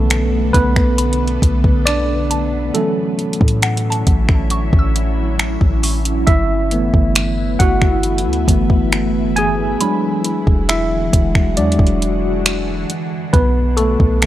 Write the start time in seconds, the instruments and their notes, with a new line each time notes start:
Already playing: 808-style bass B1, ambient pad B2 D3 A3 B3, tine electric piano D3 A3 B3 C#4 A4 B4, synth pluck C#6
0.10 finger snap, closed hi-hat
0.53 808-style bass B1, tine electric piano B3 B4, kick, closed hi-hat
0.76 finger snap, kick
0.98 synth pluck B5, closed hi-hat
1.13 closed hi-hat
1.28 closed hi-hat
1.42 808-style bass B1, kick, closed hi-hat
1.64 kick
1.86 tine electric piano D4 D5, finger snap, closed hi-hat
2.31 synth pluck A5, closed hi-hat
2.74 ambient pad D3 F#3 C#4 E4, tine electric piano E3 F#3 A3 C#4 A4, closed hi-hat
3.19 closed hi-hat
3.33 closed hi-hat
3.41 808-style bass A2, kick
3.48 closed hi-hat
3.62 synth pluck F#5, finger snap, closed hi-hat
3.77 closed hi-hat
3.90 synth pluck A5, closed hi-hat
4.07 808-style bass A1, kick, closed hi-hat
4.29 finger snap, kick
4.50 synth pluck C#6, closed hi-hat
4.73 808-style bass A1, kick
4.79 synth pluck E6
4.96 closed hi-hat
5.39 finger snap, closed hi-hat
5.61 808-style bass A1, kick
5.83 synth pluck C#6, closed hi-hat, open hi-hat
6.05 closed hi-hat
6.27 808-style bass G1, ambient pad E3 A3 B3 E4, tine electric piano E4 E5, kick, closed hi-hat
6.71 tine electric piano E3 A3 B3, closed hi-hat
6.94 808-style bass G1, kick
7.15 finger snap, closed hi-hat
7.59 808-style bass G1, tine electric piano F#4 F#5, kick, closed hi-hat
7.82 finger snap, kick
8.03 closed hi-hat
8.18 closed hi-hat
8.26 808-style bass D2
8.33 closed hi-hat
8.48 808-style bass G1, tine electric piano E3 A3 B3, kick, closed hi-hat
8.70 kick
8.92 finger snap, closed hi-hat
9.36 tine electric piano G#4 G#5, closed hi-hat
9.80 ambient pad D3 G#3 F#4, tine electric piano F#3 G#3 D4, synth pluck B5, closed hi-hat
10.24 closed hi-hat
10.47 808-style bass E1, kick
10.69 tine electric piano E4 E5, finger snap, closed hi-hat
11.13 808-style bass E1, kick, closed hi-hat
11.35 finger snap, kick
11.57 808-style bass E2, tine electric piano F#3 G#3 D4 D5, closed hi-hat
11.72 closed hi-hat
11.79 808-style bass E1, kick
11.87 closed hi-hat
12.02 closed hi-hat
12.46 finger snap, closed hi-hat
12.89 ambient pad B2 A3 B3, closed hi-hat
13.33 808-style bass B1, tine electric piano B3 B4, kick, closed hi-hat
13.77 tine electric piano A3 A4, synth pluck C#6, closed hi-hat
14.00 808-style bass B1, kick
14.22 tine electric piano D3 A3, finger snap, closed hi-hat